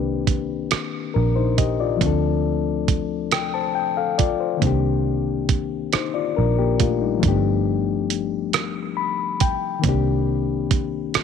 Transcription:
Already playing: picked electric bass C2, reed electric piano D#3 A#3 C4 D4 G4 B4
0.27 kick, closed hi-hat
0.71 muted picked electric bass stroke, cross-stick, closed hi-hat
1.14 picked electric bass A#1, reed electric piano D4 A#4
1.36 reed electric piano D#4 C5
1.58 reed electric piano G4 D#5, kick, closed hi-hat
1.80 reed electric piano F4 D5
1.97 reed electric piano F3 A3
2.01 picked electric bass D2, reed electric piano C4 D4, kick, closed hi-hat
2.07 reed electric piano A4
2.88 kick, closed hi-hat
3.32 reed electric piano G5, cross-stick, closed hi-hat
3.54 reed electric piano C5 A5
3.75 reed electric piano G5
3.97 reed electric piano A4 F5
4.18 reed electric piano F4 D5, kick, closed hi-hat
4.40 reed electric piano C5
4.57 reed electric piano D#3 A#3
4.62 picked electric bass C2, reed electric piano C4 D4, kick, closed hi-hat
4.67 reed electric piano G4
5.49 kick, closed hi-hat
5.93 reed electric piano D#4 C5, muted picked electric bass stroke, cross-stick, closed hi-hat
6.14 reed electric piano F4 D5
6.37 picked electric bass A#1, reed electric piano D4 A#4
6.58 reed electric piano A#3 G4
6.80 reed electric piano A3 F4, kick, closed hi-hat
7.02 reed electric piano G3 D#4
7.18 reed electric piano F3 A3
7.23 picked electric bass G1, reed electric piano A#3 D4, kick, closed hi-hat
7.28 reed electric piano B3 G4
8.10 closed hi-hat
8.53 cross-stick, closed hi-hat
8.97 reed electric piano B5
9.40 reed electric piano G5, kick, closed hi-hat
9.79 reed electric piano D#3 A#3
9.84 picked electric bass C2, reed electric piano C4 D4, kick, closed hi-hat
9.89 reed electric piano G4
10.71 kick, closed hi-hat
11.14 muted picked electric bass stroke, cross-stick, closed hi-hat

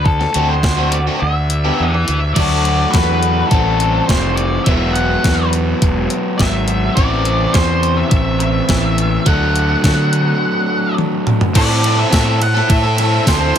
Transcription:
Already playing: fingered electric bass D2
0.04 lead electric guitar A4, kick
0.21 muted overdriven electric guitar stroke, snare
0.34 fingered electric bass D2, overdriven electric guitar A3 C4 F#4, closed hi-hat
0.48 lead electric guitar C5
0.63 muted overdriven electric guitar stroke, kick, snare
0.78 overdriven electric guitar A3 C4 F#4
0.91 lead electric guitar D5, closed hi-hat
1.07 overdriven electric guitar A3 C4 F#4
1.20 fingered electric bass D2, lead electric guitar E5, muted overdriven electric guitar stroke
1.50 closed hi-hat
1.64 overdriven electric guitar B3 D4 G4
1.77 fingered electric bass E2, lead electric guitar B4 E5
1.94 muted overdriven electric guitar stroke
2.08 fingered electric bass D2, closed hi-hat
2.34 fingered electric bass D2, overdriven electric guitar F#3 A3, lead electric guitar D5, kick, closed hi-hat, crash
2.38 overdriven electric guitar D4 F#4
2.65 closed hi-hat
2.91 fingered electric bass E2, lead electric guitar B4, kick, closed hi-hat
2.95 snare
3.23 closed hi-hat
3.48 fingered electric bass A1, overdriven electric guitar E3, lead electric guitar A4, kick, closed hi-hat
3.53 overdriven electric guitar C4 E4
3.80 closed hi-hat
4.06 fingered electric bass F1, lead electric guitar C5, kick, snare, closed hi-hat
4.35 lead electric guitar D5, closed hi-hat
4.64 fingered electric bass E1, overdriven electric guitar F#3, lead electric guitar E5, kick, closed hi-hat
4.68 overdriven electric guitar B3 E4
4.93 lead electric guitar F#5, closed hi-hat
5.24 fingered electric bass E2, kick, snare, closed hi-hat
5.53 closed hi-hat
5.82 fingered electric bass E1, kick, closed hi-hat
6.10 closed hi-hat
6.38 fingered electric bass G#1, lead electric guitar E5, kick, snare, closed hi-hat
6.68 closed hi-hat
6.95 fingered electric bass A1, overdriven electric guitar E3 C4, lead electric guitar D5, kick, closed hi-hat
7.00 overdriven electric guitar E4
7.25 closed hi-hat
7.53 fingered electric bass E2, lead electric guitar C5, kick, snare, closed hi-hat
7.83 closed hi-hat
7.97 lead electric guitar E5
8.09 fingered electric bass A1, lead electric guitar E5, kick, closed hi-hat
8.40 lead electric guitar E5, closed hi-hat
8.69 fingered electric bass A1, kick, snare, closed hi-hat
8.98 closed hi-hat
9.26 fingered electric bass D2, overdriven electric guitar F#3 A3 D4, lead electric guitar F#5, kick, closed hi-hat
9.56 closed hi-hat
9.84 fingered electric bass D3, kick, snare, closed hi-hat
10.13 closed hi-hat
10.98 high tom
11.27 mid tom
11.41 floor tom
11.54 fingered electric bass A2, overdriven electric guitar C4 E4 A4, analog synth pad E4 C5 A5, lead electric guitar D5, kick, crash, ride
11.69 overdriven electric guitar E4 A4
11.83 overdriven electric guitar C4 E4 A4, ride
11.99 lead electric guitar E5
12.11 fingered electric bass A2, overdriven electric guitar C4 E4 A4, kick, snare, ride, tambourine
12.40 lead electric guitar F#5, muted overdriven electric guitar stroke, ride
12.55 overdriven electric guitar E4 A4, snare
12.69 fingered electric bass A2, lead electric guitar E5, kick, ride
12.83 overdriven electric guitar E4 A4
12.98 overdriven electric guitar C4 E4 A4, ride
13.26 fingered electric bass D2, overdriven electric guitar C4 E4 A4, lead electric guitar C5, kick, snare, ride, tambourine
13.41 overdriven electric guitar E4 A4
13.54 overdriven electric guitar C4

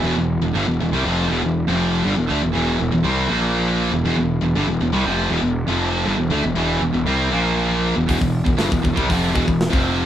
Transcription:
0.03 picked electric bass E1, distorted electric guitar E2 B2
0.17 picked electric bass E1, distorted electric guitar E2 B2
0.42 picked electric bass E1, distorted electric guitar E2 B2
0.55 picked electric bass G1, distorted electric guitar G2 D3
0.67 picked electric bass E1, distorted electric guitar E2 B2
0.80 picked electric bass E1, distorted electric guitar E2 B2
0.93 picked electric bass C2, distorted electric guitar C3 G3
1.05 picked electric bass F1, distorted electric guitar F2 C3 F3
1.31 picked electric bass E1, distorted electric guitar E2 B2
1.44 picked electric bass E1, distorted electric guitar E2 B2
1.68 picked electric bass F1, distorted electric guitar F2 C3 F3
2.05 picked electric bass G1, distorted electric guitar G2 D3
2.17 picked electric bass E1, distorted electric guitar E2 B2
2.30 picked electric bass D2, distorted electric guitar D3 A3
2.42 picked electric bass E1, distorted electric guitar E2 B2
2.55 picked electric bass E1, distorted electric guitar E2 B2 E3
2.80 picked electric bass E1, distorted electric guitar E2 B2
2.92 picked electric bass E1, distorted electric guitar E2 B2
3.04 picked electric bass C2, distorted electric guitar C3 G3 C4
3.30 picked electric bass A#1, distorted electric guitar A#2 F3 A#3
3.92 picked electric bass E1, distorted electric guitar E2 B2
4.05 picked electric bass E1, distorted electric guitar E2 B2
4.17 picked electric bass E1, distorted electric guitar E2 B2
4.41 picked electric bass E1, distorted electric guitar E2 B2
4.55 picked electric bass G1, distorted electric guitar G2 D3
4.68 picked electric bass E1, distorted electric guitar E2 B2
4.80 picked electric bass E1, distorted electric guitar E2 B2
4.92 picked electric bass C2, distorted electric guitar C3 G3
5.05 picked electric bass F1, distorted electric guitar F2 C3 F3
5.30 picked electric bass E1, distorted electric guitar E2 B2
5.43 picked electric bass E1, distorted electric guitar E2 B2
5.68 picked electric bass F1, distorted electric guitar F2 C3 F3
6.05 picked electric bass G1, distorted electric guitar G2 D3
6.17 picked electric bass E1, distorted electric guitar E2 B2
6.30 picked electric bass D2, distorted electric guitar D3 A3
6.44 picked electric bass E1, distorted electric guitar E2 B2
6.55 picked electric bass E1, distorted electric guitar E2 B2 E3
6.81 picked electric bass E1, distorted electric guitar E2 B2
6.93 picked electric bass E1, distorted electric guitar E2 B2
7.05 picked electric bass C2, distorted electric guitar C3 G3 C4
7.32 picked electric bass A#1, distorted electric guitar A#2 F3 A#3
7.96 picked electric bass E1, distorted electric guitar E2 B2
8.09 picked electric bass E1, distorted electric guitar E2 B2, kick, open hi-hat
8.19 picked electric bass E1, distorted electric guitar E2 B2, kick
8.45 picked electric bass E1, distorted electric guitar E2 B2, kick
8.57 picked electric bass G1, distorted electric guitar G2 D3, snare, open hi-hat
8.72 picked electric bass E1, distorted electric guitar E2 B2, kick
8.83 picked electric bass E1, distorted electric guitar E2 B2, kick
8.96 picked electric bass C2, distorted electric guitar C3 G3, kick
9.10 picked electric bass F1, distorted electric guitar F2 C3 F3, kick, open hi-hat
9.34 picked electric bass E1, distorted electric guitar E2 B2, kick
9.46 picked electric bass E1, distorted electric guitar E2 B2, kick
9.61 snare, open hi-hat
9.70 picked electric bass F1, distorted electric guitar F2 C3 F3, kick

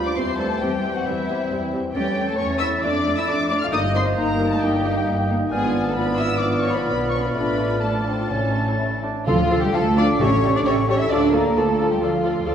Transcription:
Already playing: double bass section D2, bassoon F3, french horn section G3 F4, clarinet D5, flute G6
0.05 cello section D4, violin section D5 D6
0.15 double bass section E2, bassoon E3, viola section G3 C4, french horn section G3 C4, cello section C4, violin section C5 C6, clarinet C5, flute G6
0.38 viola section G3 C4, cello section A3, violin section A4 A5
0.61 double bass section E2, cello section G3, viola section G3 C4, french horn section G3 C4, violin section G4 G5
0.84 viola section G3 C4
0.94 cello section F#3, violin section F#4 F#5
1.06 double bass section E2, cello section E3, french horn section G3 C4, viola section G3 C4, violin section E4 E5
1.30 viola section G3 C4
1.51 double bass section E2, viola section G3 C4
1.73 viola section G3 C4
1.93 double bass section E2, cello section G3, french horn section A3 C#4, viola section A3 C#4, violin section G4 G5, clarinet C#5, flute A6
2.17 viola section A3 C#4
2.27 cello section A3, violin section A4 A5
2.37 double bass section E2, french horn section A3 C#4, viola section A3 C#4, cello section C#4, violin section C#5 C#6
2.60 viola section A3 C#4, cello section E4, violin section E5 E6
2.82 double bass section F2, french horn section A3 D4, viola section A3 D4, bassoon A3, cello section D4, violin section D5 D6, clarinet D5
3.06 viola section A3 D4
3.17 cello section E4, violin section E5 E6
3.27 double bass section F2, viola section A3 D4, french horn section A3 D4, cello section D4, violin section D5 D6
3.50 viola section A3 D4, cello section D4, violin section D5 D6
3.61 cello section F4, violin section F5 F6
3.71 double bass section G1, french horn section G3 D#4, viola section A#3 D#4, bassoon A#3, cello section D#4, clarinet D#5, violin section D#5 D#6, flute G6
3.94 viola section A#3 D#4, cello section C4, violin section C5 C6
4.16 double bass section G1, french horn section G3 D#4, cello section A#3, viola section A#3 D#4, violin section A#4 A#5
4.40 viola section A#3 D#4
4.52 cello section A3, violin section A4 A5
4.62 double bass section G1, french horn section G3 D#4, cello section G3, viola section A#3 D#4, violin section G4 G5
4.85 viola section A#3 D#4
5.07 double bass section G1, viola section A#3 D#4
5.29 viola section A#3 D#4
5.51 double bass section G#1, french horn section F3 D4, cello section G#3, bassoon B3, viola section B3 F4, violin section G#4 G#5, clarinet D5, flute F6
5.85 cello section A3, violin section A4 A5
5.96 french horn section F3 D4, viola section B3 F4, cello section B3, violin section B4 B5
6.17 cello section E4, violin section E5 E6
6.39 french horn section F3 D4, viola section B3 F4, cello section D4, violin section D5 D6
6.61 cello section C#4, violin section C#5 C#6
6.74 cello section B3, violin section B4 B5
6.86 double bass section B1, french horn section F3 D4, cello section B3, viola section B3 F4, violin section B4 B5
7.10 cello section C#4, violin section C#5 C#6
7.22 cello section B3, violin section B4 B5
7.34 double bass section A1, french horn section F3 D4, bassoon A3, cello section B3, viola section D4 F4, violin section B4 B5
7.83 french horn section F3 D4, cello section A3, bassoon D4, viola section D4 F4, violin section A4 A5
8.08 bassoon C4
8.32 double bass section A1, timpani A2, french horn section E3 C#4, bassoon C#4, viola section C#4 E4, clarinet C#5, flute A6
8.56 bassoon D4
8.79 bassoon E4
9.03 bassoon D4
9.26 double bass section D2, timpani D3, bassoon F3, cello section F3, violin section F4 F5, viola section F4 A4, french horn section F4 A4, clarinet A4, flute F5
9.50 bassoon F3, viola section F4 A4, clarinet A4, violin section F5
9.61 cello section G3, violin section G4, flute G5
9.73 double bass section D2, bassoon F3, cello section A3, viola section F4 A4, clarinet A4, violin section A4 F5, flute A5
9.96 bassoon F3, cello section D4, viola section F4 A4, clarinet A4, violin section D5 F5, flute D6
10.19 double bass section A1, timpani A2, bassoon G3, cello section C#4, french horn section G4, viola section G4 A4, clarinet A4, violin section C#5 E5, flute C#6
10.43 bassoon G3, viola section G4 A4, clarinet A4, violin section E5
10.54 cello section D4, violin section D5, flute D6
10.66 double bass section A1, bassoon G3, cello section C#4, viola section G4 A4, clarinet A4, violin section C#5 E5, flute C#6
10.88 bassoon G3, cello section C#4, viola section G4 A4, clarinet A4, violin section C#5 E5, flute C#6
10.99 cello section E4, violin section E5
11.04 flute E6
11.10 double bass section D2, bassoon F3, cello section D4, french horn section F4, viola section F4 A4, clarinet A4, violin section D5, flute D6
11.33 bassoon F3, cello section A#3, viola section F4 A4, clarinet A4, violin section A#4 D5, flute A#5
11.56 double bass section D2, bassoon F3, cello section A3, viola section F4 A4, clarinet A4, violin section A4 D5, flute A5
11.78 bassoon F3, viola section F4 A4, clarinet A4, violin section D5
11.91 cello section G3, violin section G4, flute G5
12.01 double bass section D2, bassoon F3, cello section F3, viola section F4 A4, violin section F4 D5, clarinet A4, flute F5
12.23 bassoon F3, viola section F4 A4, clarinet A4, violin section D5
12.46 double bass section D2, bassoon F3, viola section F4 A4, clarinet A4, violin section D5

